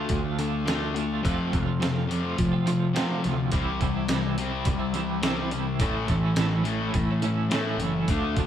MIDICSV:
0, 0, Header, 1, 6, 480
1, 0, Start_track
1, 0, Tempo, 570342
1, 1042, Time_signature, 4, 2, 24, 8
1, 7126, End_track
2, 0, Start_track
2, 0, Title_t, "Clean electric guitar"
2, 0, Program_c, 0, 27
2, 0, Note_on_c, 0, 57, 54
2, 0, Note_on_c, 0, 62, 61
2, 0, Note_on_c, 0, 65, 72
2, 196, Note_off_c, 0, 65, 0
2, 203, Note_off_c, 0, 62, 0
2, 206, Note_on_c, 0, 65, 66
2, 209, Note_off_c, 0, 57, 0
2, 214, Note_on_c, 0, 62, 59
2, 219, Note_on_c, 0, 57, 56
2, 326, Note_off_c, 0, 57, 0
2, 328, Note_on_c, 0, 50, 67
2, 334, Note_off_c, 0, 62, 0
2, 336, Note_off_c, 0, 65, 0
2, 336, Note_on_c, 0, 57, 71
2, 344, Note_on_c, 0, 62, 80
2, 347, Note_on_c, 0, 65, 83
2, 562, Note_off_c, 0, 50, 0
2, 570, Note_off_c, 0, 57, 0
2, 572, Note_on_c, 0, 50, 92
2, 573, Note_off_c, 0, 62, 0
2, 577, Note_off_c, 0, 65, 0
2, 580, Note_on_c, 0, 57, 94
2, 583, Note_on_c, 0, 62, 102
2, 587, Note_on_c, 0, 65, 105
2, 800, Note_off_c, 0, 50, 0
2, 803, Note_off_c, 0, 57, 0
2, 810, Note_off_c, 0, 65, 0
2, 810, Note_on_c, 0, 50, 75
2, 812, Note_off_c, 0, 62, 0
2, 813, Note_on_c, 0, 57, 77
2, 820, Note_on_c, 0, 65, 74
2, 822, Note_on_c, 0, 62, 73
2, 931, Note_off_c, 0, 65, 0
2, 941, Note_off_c, 0, 62, 0
2, 942, Note_on_c, 0, 65, 69
2, 944, Note_off_c, 0, 57, 0
2, 951, Note_on_c, 0, 62, 69
2, 954, Note_on_c, 0, 57, 65
2, 1032, Note_off_c, 0, 50, 0
2, 1038, Note_off_c, 0, 65, 0
2, 1042, Note_off_c, 0, 62, 0
2, 1044, Note_off_c, 0, 57, 0
2, 1049, Note_on_c, 0, 41, 82
2, 1051, Note_on_c, 0, 48, 85
2, 1051, Note_on_c, 0, 53, 80
2, 1054, Note_on_c, 0, 57, 93
2, 1060, Note_on_c, 0, 60, 94
2, 1062, Note_on_c, 0, 65, 96
2, 1277, Note_off_c, 0, 53, 0
2, 1287, Note_off_c, 0, 57, 0
2, 1287, Note_on_c, 0, 53, 71
2, 1294, Note_off_c, 0, 65, 0
2, 1297, Note_on_c, 0, 57, 68
2, 1299, Note_off_c, 0, 60, 0
2, 1303, Note_on_c, 0, 60, 78
2, 1304, Note_on_c, 0, 65, 78
2, 1388, Note_off_c, 0, 65, 0
2, 1398, Note_on_c, 0, 65, 73
2, 1404, Note_off_c, 0, 57, 0
2, 1406, Note_off_c, 0, 60, 0
2, 1410, Note_off_c, 0, 53, 0
2, 1410, Note_on_c, 0, 60, 63
2, 1414, Note_on_c, 0, 57, 72
2, 1421, Note_on_c, 0, 53, 62
2, 1508, Note_off_c, 0, 41, 0
2, 1514, Note_off_c, 0, 48, 0
2, 1518, Note_on_c, 0, 41, 97
2, 1521, Note_off_c, 0, 53, 0
2, 1523, Note_off_c, 0, 57, 0
2, 1524, Note_on_c, 0, 48, 94
2, 1528, Note_off_c, 0, 65, 0
2, 1531, Note_off_c, 0, 60, 0
2, 1531, Note_on_c, 0, 53, 105
2, 1533, Note_on_c, 0, 57, 91
2, 1534, Note_on_c, 0, 60, 106
2, 1538, Note_on_c, 0, 65, 103
2, 1627, Note_off_c, 0, 65, 0
2, 1638, Note_on_c, 0, 65, 76
2, 1641, Note_off_c, 0, 57, 0
2, 1642, Note_off_c, 0, 60, 0
2, 1645, Note_on_c, 0, 60, 64
2, 1648, Note_off_c, 0, 53, 0
2, 1651, Note_on_c, 0, 57, 65
2, 1658, Note_on_c, 0, 53, 55
2, 1755, Note_off_c, 0, 53, 0
2, 1756, Note_off_c, 0, 57, 0
2, 1760, Note_off_c, 0, 65, 0
2, 1766, Note_off_c, 0, 60, 0
2, 1879, Note_on_c, 0, 65, 73
2, 1881, Note_off_c, 0, 41, 0
2, 1882, Note_on_c, 0, 60, 63
2, 1884, Note_off_c, 0, 48, 0
2, 1887, Note_on_c, 0, 57, 62
2, 1891, Note_on_c, 0, 53, 55
2, 2108, Note_off_c, 0, 65, 0
2, 2118, Note_off_c, 0, 60, 0
2, 2118, Note_on_c, 0, 65, 65
2, 2126, Note_off_c, 0, 57, 0
2, 2128, Note_off_c, 0, 53, 0
2, 2128, Note_on_c, 0, 60, 66
2, 2136, Note_on_c, 0, 57, 55
2, 2138, Note_on_c, 0, 53, 57
2, 2229, Note_off_c, 0, 53, 0
2, 2234, Note_off_c, 0, 57, 0
2, 2239, Note_on_c, 0, 53, 71
2, 2243, Note_off_c, 0, 65, 0
2, 2244, Note_off_c, 0, 60, 0
2, 2244, Note_on_c, 0, 57, 67
2, 2253, Note_on_c, 0, 65, 77
2, 2254, Note_on_c, 0, 60, 74
2, 2468, Note_on_c, 0, 41, 91
2, 2470, Note_off_c, 0, 53, 0
2, 2471, Note_off_c, 0, 60, 0
2, 2476, Note_off_c, 0, 57, 0
2, 2477, Note_off_c, 0, 65, 0
2, 2478, Note_on_c, 0, 48, 94
2, 2480, Note_on_c, 0, 53, 90
2, 2481, Note_on_c, 0, 60, 104
2, 2486, Note_on_c, 0, 57, 95
2, 2487, Note_on_c, 0, 65, 95
2, 2707, Note_off_c, 0, 53, 0
2, 2717, Note_off_c, 0, 60, 0
2, 2717, Note_on_c, 0, 53, 75
2, 2718, Note_off_c, 0, 57, 0
2, 2720, Note_off_c, 0, 65, 0
2, 2727, Note_on_c, 0, 60, 83
2, 2728, Note_on_c, 0, 57, 76
2, 2730, Note_on_c, 0, 65, 88
2, 2828, Note_off_c, 0, 65, 0
2, 2833, Note_off_c, 0, 60, 0
2, 2835, Note_off_c, 0, 57, 0
2, 2838, Note_on_c, 0, 65, 78
2, 2843, Note_off_c, 0, 53, 0
2, 2843, Note_on_c, 0, 60, 68
2, 2845, Note_on_c, 0, 57, 66
2, 2853, Note_on_c, 0, 53, 63
2, 2941, Note_off_c, 0, 41, 0
2, 2946, Note_off_c, 0, 48, 0
2, 2946, Note_off_c, 0, 65, 0
2, 2948, Note_off_c, 0, 60, 0
2, 2949, Note_off_c, 0, 57, 0
2, 2953, Note_off_c, 0, 53, 0
2, 2959, Note_on_c, 0, 48, 82
2, 2963, Note_on_c, 0, 52, 86
2, 2965, Note_on_c, 0, 55, 91
2, 2971, Note_on_c, 0, 60, 91
2, 2971, Note_on_c, 0, 64, 103
2, 3203, Note_off_c, 0, 52, 0
2, 3206, Note_off_c, 0, 55, 0
2, 3206, Note_on_c, 0, 52, 81
2, 3209, Note_off_c, 0, 60, 0
2, 3216, Note_on_c, 0, 55, 82
2, 3219, Note_on_c, 0, 60, 82
2, 3220, Note_off_c, 0, 64, 0
2, 3223, Note_on_c, 0, 64, 79
2, 3315, Note_off_c, 0, 64, 0
2, 3318, Note_off_c, 0, 60, 0
2, 3319, Note_on_c, 0, 64, 68
2, 3323, Note_off_c, 0, 55, 0
2, 3328, Note_on_c, 0, 60, 64
2, 3333, Note_on_c, 0, 55, 52
2, 3431, Note_off_c, 0, 48, 0
2, 3440, Note_off_c, 0, 55, 0
2, 3441, Note_on_c, 0, 48, 97
2, 3442, Note_off_c, 0, 60, 0
2, 3443, Note_off_c, 0, 52, 0
2, 3446, Note_on_c, 0, 52, 99
2, 3451, Note_on_c, 0, 55, 100
2, 3452, Note_off_c, 0, 64, 0
2, 3452, Note_on_c, 0, 60, 107
2, 3456, Note_on_c, 0, 64, 99
2, 3552, Note_off_c, 0, 64, 0
2, 3555, Note_on_c, 0, 64, 73
2, 3556, Note_off_c, 0, 55, 0
2, 3557, Note_off_c, 0, 60, 0
2, 3566, Note_on_c, 0, 55, 63
2, 3567, Note_on_c, 0, 60, 61
2, 3685, Note_off_c, 0, 55, 0
2, 3691, Note_off_c, 0, 52, 0
2, 3691, Note_off_c, 0, 60, 0
2, 3698, Note_off_c, 0, 64, 0
2, 3797, Note_on_c, 0, 64, 68
2, 3802, Note_off_c, 0, 48, 0
2, 3807, Note_on_c, 0, 60, 67
2, 3815, Note_on_c, 0, 55, 52
2, 4017, Note_off_c, 0, 64, 0
2, 4026, Note_off_c, 0, 60, 0
2, 4027, Note_on_c, 0, 64, 71
2, 4033, Note_off_c, 0, 55, 0
2, 4036, Note_on_c, 0, 60, 57
2, 4043, Note_on_c, 0, 55, 51
2, 4143, Note_off_c, 0, 55, 0
2, 4152, Note_off_c, 0, 60, 0
2, 4153, Note_on_c, 0, 52, 69
2, 4153, Note_on_c, 0, 55, 65
2, 4159, Note_off_c, 0, 64, 0
2, 4162, Note_on_c, 0, 60, 66
2, 4169, Note_on_c, 0, 64, 76
2, 4397, Note_off_c, 0, 52, 0
2, 4401, Note_off_c, 0, 55, 0
2, 4402, Note_off_c, 0, 60, 0
2, 4404, Note_on_c, 0, 48, 94
2, 4407, Note_on_c, 0, 52, 95
2, 4409, Note_off_c, 0, 64, 0
2, 4411, Note_on_c, 0, 55, 81
2, 4412, Note_on_c, 0, 60, 100
2, 4419, Note_on_c, 0, 64, 98
2, 4635, Note_off_c, 0, 52, 0
2, 4635, Note_off_c, 0, 55, 0
2, 4639, Note_off_c, 0, 60, 0
2, 4645, Note_on_c, 0, 52, 77
2, 4645, Note_on_c, 0, 55, 82
2, 4647, Note_off_c, 0, 64, 0
2, 4650, Note_on_c, 0, 60, 69
2, 4657, Note_on_c, 0, 64, 88
2, 4762, Note_off_c, 0, 64, 0
2, 4771, Note_off_c, 0, 60, 0
2, 4772, Note_on_c, 0, 64, 75
2, 4773, Note_off_c, 0, 55, 0
2, 4783, Note_on_c, 0, 55, 67
2, 4869, Note_off_c, 0, 48, 0
2, 4870, Note_off_c, 0, 52, 0
2, 4873, Note_off_c, 0, 64, 0
2, 4878, Note_off_c, 0, 55, 0
2, 4887, Note_on_c, 0, 45, 86
2, 4889, Note_on_c, 0, 52, 87
2, 4892, Note_on_c, 0, 57, 94
2, 4895, Note_on_c, 0, 61, 95
2, 4904, Note_on_c, 0, 64, 86
2, 5116, Note_off_c, 0, 52, 0
2, 5126, Note_on_c, 0, 52, 70
2, 5127, Note_off_c, 0, 57, 0
2, 5130, Note_off_c, 0, 61, 0
2, 5131, Note_on_c, 0, 57, 77
2, 5133, Note_off_c, 0, 64, 0
2, 5140, Note_on_c, 0, 61, 70
2, 5144, Note_on_c, 0, 64, 75
2, 5241, Note_off_c, 0, 64, 0
2, 5251, Note_on_c, 0, 64, 68
2, 5255, Note_off_c, 0, 61, 0
2, 5262, Note_off_c, 0, 57, 0
2, 5265, Note_on_c, 0, 61, 63
2, 5266, Note_on_c, 0, 57, 62
2, 5364, Note_off_c, 0, 45, 0
2, 5365, Note_off_c, 0, 52, 0
2, 5371, Note_off_c, 0, 61, 0
2, 5374, Note_off_c, 0, 64, 0
2, 5374, Note_on_c, 0, 45, 100
2, 5375, Note_on_c, 0, 52, 89
2, 5379, Note_off_c, 0, 57, 0
2, 5381, Note_on_c, 0, 61, 90
2, 5382, Note_on_c, 0, 57, 100
2, 5384, Note_on_c, 0, 64, 96
2, 5485, Note_off_c, 0, 64, 0
2, 5495, Note_off_c, 0, 61, 0
2, 5495, Note_on_c, 0, 64, 68
2, 5506, Note_on_c, 0, 61, 62
2, 5508, Note_off_c, 0, 57, 0
2, 5512, Note_on_c, 0, 57, 57
2, 5603, Note_off_c, 0, 52, 0
2, 5605, Note_off_c, 0, 64, 0
2, 5608, Note_off_c, 0, 57, 0
2, 5609, Note_off_c, 0, 61, 0
2, 5728, Note_off_c, 0, 45, 0
2, 5737, Note_on_c, 0, 64, 77
2, 5749, Note_on_c, 0, 61, 60
2, 5751, Note_on_c, 0, 57, 56
2, 5969, Note_off_c, 0, 64, 0
2, 5978, Note_off_c, 0, 61, 0
2, 5979, Note_on_c, 0, 64, 61
2, 5988, Note_on_c, 0, 61, 60
2, 5993, Note_off_c, 0, 57, 0
2, 5996, Note_on_c, 0, 57, 60
2, 6086, Note_on_c, 0, 52, 63
2, 6088, Note_off_c, 0, 61, 0
2, 6089, Note_off_c, 0, 57, 0
2, 6093, Note_on_c, 0, 57, 73
2, 6095, Note_off_c, 0, 64, 0
2, 6099, Note_on_c, 0, 61, 78
2, 6105, Note_on_c, 0, 64, 80
2, 6338, Note_off_c, 0, 52, 0
2, 6340, Note_on_c, 0, 45, 79
2, 6343, Note_off_c, 0, 57, 0
2, 6343, Note_off_c, 0, 61, 0
2, 6345, Note_off_c, 0, 64, 0
2, 6347, Note_on_c, 0, 57, 92
2, 6348, Note_on_c, 0, 52, 95
2, 6353, Note_on_c, 0, 61, 106
2, 6355, Note_on_c, 0, 64, 89
2, 6554, Note_off_c, 0, 52, 0
2, 6564, Note_on_c, 0, 52, 61
2, 6565, Note_off_c, 0, 57, 0
2, 6567, Note_off_c, 0, 61, 0
2, 6569, Note_on_c, 0, 57, 76
2, 6574, Note_off_c, 0, 64, 0
2, 6577, Note_on_c, 0, 61, 76
2, 6584, Note_on_c, 0, 64, 76
2, 6682, Note_off_c, 0, 64, 0
2, 6692, Note_on_c, 0, 64, 71
2, 6694, Note_off_c, 0, 61, 0
2, 6703, Note_off_c, 0, 57, 0
2, 6704, Note_on_c, 0, 61, 68
2, 6707, Note_on_c, 0, 57, 59
2, 6789, Note_off_c, 0, 52, 0
2, 6792, Note_off_c, 0, 64, 0
2, 6797, Note_off_c, 0, 45, 0
2, 6798, Note_off_c, 0, 61, 0
2, 6815, Note_on_c, 0, 50, 86
2, 6820, Note_off_c, 0, 57, 0
2, 6823, Note_on_c, 0, 57, 97
2, 6829, Note_on_c, 0, 62, 87
2, 6832, Note_on_c, 0, 65, 93
2, 7046, Note_off_c, 0, 50, 0
2, 7052, Note_off_c, 0, 62, 0
2, 7056, Note_on_c, 0, 50, 77
2, 7059, Note_off_c, 0, 57, 0
2, 7062, Note_on_c, 0, 57, 76
2, 7062, Note_on_c, 0, 62, 83
2, 7070, Note_off_c, 0, 65, 0
2, 7073, Note_on_c, 0, 65, 82
2, 7126, Note_off_c, 0, 50, 0
2, 7126, Note_off_c, 0, 57, 0
2, 7126, Note_off_c, 0, 62, 0
2, 7126, Note_off_c, 0, 65, 0
2, 7126, End_track
3, 0, Start_track
3, 0, Title_t, "Distorted electric guitar"
3, 0, Program_c, 1, 30
3, 82, Note_on_c, 1, 50, 64
3, 88, Note_on_c, 1, 57, 74
3, 298, Note_off_c, 1, 50, 0
3, 301, Note_off_c, 1, 57, 0
3, 1285, Note_on_c, 1, 41, 72
3, 1286, Note_on_c, 1, 48, 83
3, 1500, Note_off_c, 1, 41, 0
3, 1500, Note_off_c, 1, 48, 0
3, 1746, Note_on_c, 1, 41, 83
3, 1752, Note_on_c, 1, 48, 101
3, 1759, Note_on_c, 1, 53, 92
3, 1980, Note_off_c, 1, 41, 0
3, 1983, Note_off_c, 1, 48, 0
3, 1986, Note_off_c, 1, 53, 0
3, 1996, Note_on_c, 1, 41, 79
3, 2002, Note_on_c, 1, 48, 81
3, 2215, Note_off_c, 1, 41, 0
3, 2218, Note_off_c, 1, 48, 0
3, 2237, Note_on_c, 1, 41, 59
3, 2243, Note_on_c, 1, 48, 58
3, 2456, Note_off_c, 1, 41, 0
3, 2459, Note_off_c, 1, 48, 0
3, 2724, Note_on_c, 1, 48, 69
3, 2725, Note_on_c, 1, 41, 61
3, 2940, Note_off_c, 1, 41, 0
3, 2940, Note_off_c, 1, 48, 0
3, 3200, Note_on_c, 1, 48, 69
3, 3417, Note_off_c, 1, 48, 0
3, 3684, Note_on_c, 1, 48, 86
3, 3688, Note_on_c, 1, 55, 84
3, 3693, Note_on_c, 1, 60, 106
3, 3909, Note_off_c, 1, 48, 0
3, 3911, Note_off_c, 1, 55, 0
3, 3913, Note_off_c, 1, 60, 0
3, 3931, Note_on_c, 1, 48, 62
3, 3933, Note_on_c, 1, 55, 88
3, 4143, Note_off_c, 1, 48, 0
3, 4144, Note_off_c, 1, 55, 0
3, 4167, Note_on_c, 1, 48, 54
3, 4381, Note_off_c, 1, 48, 0
3, 4642, Note_on_c, 1, 48, 62
3, 4858, Note_off_c, 1, 48, 0
3, 5106, Note_on_c, 1, 45, 67
3, 5330, Note_off_c, 1, 45, 0
3, 5582, Note_on_c, 1, 45, 94
3, 5583, Note_on_c, 1, 52, 84
3, 5586, Note_on_c, 1, 57, 109
3, 5816, Note_off_c, 1, 45, 0
3, 5818, Note_off_c, 1, 52, 0
3, 5820, Note_off_c, 1, 57, 0
3, 5826, Note_on_c, 1, 45, 72
3, 5829, Note_on_c, 1, 52, 79
3, 6050, Note_off_c, 1, 45, 0
3, 6052, Note_off_c, 1, 52, 0
3, 6076, Note_on_c, 1, 45, 51
3, 6295, Note_off_c, 1, 45, 0
3, 6565, Note_on_c, 1, 45, 65
3, 6779, Note_off_c, 1, 45, 0
3, 7126, End_track
4, 0, Start_track
4, 0, Title_t, "Picked electric bass"
4, 0, Program_c, 2, 34
4, 87, Note_on_c, 2, 38, 98
4, 1011, Note_off_c, 2, 38, 0
4, 1050, Note_on_c, 2, 41, 97
4, 1265, Note_off_c, 2, 41, 0
4, 1289, Note_on_c, 2, 41, 81
4, 1972, Note_off_c, 2, 41, 0
4, 2008, Note_on_c, 2, 53, 105
4, 2741, Note_on_c, 2, 38, 76
4, 2754, Note_off_c, 2, 53, 0
4, 2951, Note_off_c, 2, 38, 0
4, 2965, Note_on_c, 2, 36, 89
4, 3182, Note_off_c, 2, 36, 0
4, 3211, Note_on_c, 2, 36, 93
4, 3893, Note_off_c, 2, 36, 0
4, 3923, Note_on_c, 2, 36, 99
4, 4849, Note_off_c, 2, 36, 0
4, 4884, Note_on_c, 2, 33, 88
4, 5102, Note_off_c, 2, 33, 0
4, 5120, Note_on_c, 2, 33, 84
4, 5807, Note_off_c, 2, 33, 0
4, 5842, Note_on_c, 2, 45, 99
4, 6547, Note_on_c, 2, 30, 81
4, 6559, Note_off_c, 2, 45, 0
4, 6772, Note_off_c, 2, 30, 0
4, 6805, Note_on_c, 2, 38, 86
4, 7022, Note_off_c, 2, 38, 0
4, 7040, Note_on_c, 2, 38, 81
4, 7126, Note_off_c, 2, 38, 0
4, 7126, End_track
5, 0, Start_track
5, 0, Title_t, "Muted clean electric guitar strokes"
5, 1766, Note_on_c, 9, 29, 46
5, 1850, Note_off_c, 9, 29, 0
5, 3695, Note_on_c, 9, 29, 45
5, 3779, Note_off_c, 9, 29, 0
5, 5611, Note_on_c, 9, 29, 42
5, 5695, Note_off_c, 9, 29, 0
5, 7126, End_track
6, 0, Start_track
6, 0, Title_t, "Drums"
6, 75, Note_on_c, 9, 42, 80
6, 83, Note_on_c, 9, 36, 89
6, 159, Note_off_c, 9, 42, 0
6, 167, Note_off_c, 9, 36, 0
6, 325, Note_on_c, 9, 42, 62
6, 409, Note_off_c, 9, 42, 0
6, 569, Note_on_c, 9, 42, 73
6, 574, Note_on_c, 9, 38, 101
6, 653, Note_off_c, 9, 42, 0
6, 658, Note_off_c, 9, 38, 0
6, 808, Note_on_c, 9, 42, 56
6, 892, Note_off_c, 9, 42, 0
6, 1050, Note_on_c, 9, 36, 98
6, 1054, Note_on_c, 9, 42, 75
6, 1134, Note_off_c, 9, 36, 0
6, 1138, Note_off_c, 9, 42, 0
6, 1290, Note_on_c, 9, 36, 86
6, 1290, Note_on_c, 9, 42, 59
6, 1374, Note_off_c, 9, 36, 0
6, 1374, Note_off_c, 9, 42, 0
6, 1533, Note_on_c, 9, 42, 79
6, 1538, Note_on_c, 9, 38, 98
6, 1617, Note_off_c, 9, 42, 0
6, 1623, Note_off_c, 9, 38, 0
6, 1775, Note_on_c, 9, 42, 58
6, 1859, Note_off_c, 9, 42, 0
6, 2007, Note_on_c, 9, 42, 85
6, 2010, Note_on_c, 9, 36, 100
6, 2091, Note_off_c, 9, 42, 0
6, 2094, Note_off_c, 9, 36, 0
6, 2247, Note_on_c, 9, 42, 65
6, 2331, Note_off_c, 9, 42, 0
6, 2490, Note_on_c, 9, 42, 87
6, 2495, Note_on_c, 9, 38, 109
6, 2574, Note_off_c, 9, 42, 0
6, 2579, Note_off_c, 9, 38, 0
6, 2728, Note_on_c, 9, 42, 50
6, 2733, Note_on_c, 9, 38, 26
6, 2812, Note_off_c, 9, 42, 0
6, 2817, Note_off_c, 9, 38, 0
6, 2959, Note_on_c, 9, 42, 87
6, 2964, Note_on_c, 9, 36, 106
6, 3043, Note_off_c, 9, 42, 0
6, 3048, Note_off_c, 9, 36, 0
6, 3204, Note_on_c, 9, 36, 85
6, 3205, Note_on_c, 9, 42, 63
6, 3289, Note_off_c, 9, 36, 0
6, 3289, Note_off_c, 9, 42, 0
6, 3438, Note_on_c, 9, 42, 84
6, 3443, Note_on_c, 9, 38, 108
6, 3522, Note_off_c, 9, 42, 0
6, 3527, Note_off_c, 9, 38, 0
6, 3684, Note_on_c, 9, 42, 64
6, 3768, Note_off_c, 9, 42, 0
6, 3915, Note_on_c, 9, 42, 80
6, 3919, Note_on_c, 9, 36, 95
6, 3999, Note_off_c, 9, 42, 0
6, 4003, Note_off_c, 9, 36, 0
6, 4156, Note_on_c, 9, 42, 65
6, 4240, Note_off_c, 9, 42, 0
6, 4399, Note_on_c, 9, 42, 68
6, 4405, Note_on_c, 9, 38, 113
6, 4484, Note_off_c, 9, 42, 0
6, 4489, Note_off_c, 9, 38, 0
6, 4641, Note_on_c, 9, 42, 52
6, 4725, Note_off_c, 9, 42, 0
6, 4878, Note_on_c, 9, 42, 78
6, 4879, Note_on_c, 9, 36, 106
6, 4962, Note_off_c, 9, 42, 0
6, 4964, Note_off_c, 9, 36, 0
6, 5119, Note_on_c, 9, 42, 59
6, 5120, Note_on_c, 9, 36, 86
6, 5204, Note_off_c, 9, 36, 0
6, 5204, Note_off_c, 9, 42, 0
6, 5354, Note_on_c, 9, 42, 77
6, 5359, Note_on_c, 9, 38, 112
6, 5438, Note_off_c, 9, 42, 0
6, 5443, Note_off_c, 9, 38, 0
6, 5598, Note_on_c, 9, 42, 56
6, 5682, Note_off_c, 9, 42, 0
6, 5840, Note_on_c, 9, 42, 76
6, 5841, Note_on_c, 9, 36, 102
6, 5925, Note_off_c, 9, 36, 0
6, 5925, Note_off_c, 9, 42, 0
6, 6078, Note_on_c, 9, 42, 61
6, 6163, Note_off_c, 9, 42, 0
6, 6321, Note_on_c, 9, 42, 80
6, 6326, Note_on_c, 9, 38, 98
6, 6405, Note_off_c, 9, 42, 0
6, 6410, Note_off_c, 9, 38, 0
6, 6562, Note_on_c, 9, 42, 60
6, 6646, Note_off_c, 9, 42, 0
6, 6800, Note_on_c, 9, 42, 82
6, 6801, Note_on_c, 9, 36, 107
6, 6884, Note_off_c, 9, 42, 0
6, 6885, Note_off_c, 9, 36, 0
6, 7040, Note_on_c, 9, 42, 69
6, 7042, Note_on_c, 9, 36, 83
6, 7124, Note_off_c, 9, 42, 0
6, 7126, Note_off_c, 9, 36, 0
6, 7126, End_track
0, 0, End_of_file